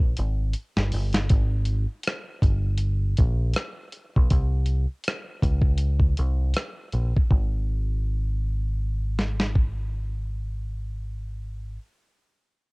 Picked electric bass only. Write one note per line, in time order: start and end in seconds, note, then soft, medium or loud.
0.00 0.14 A#1 medium
0.19 0.53 G#1 medium
0.77 0.92 G1 medium
0.93 1.28 G1 medium
1.31 1.85 G#1 loud
2.43 3.14 G1 medium
3.19 3.53 A#1 medium
4.17 4.31 B1 medium
4.31 4.85 C2 loud
5.43 6.14 C#2 medium
6.19 6.53 C2 medium
6.93 7.12 A#1 medium
7.31 11.77 G#1 medium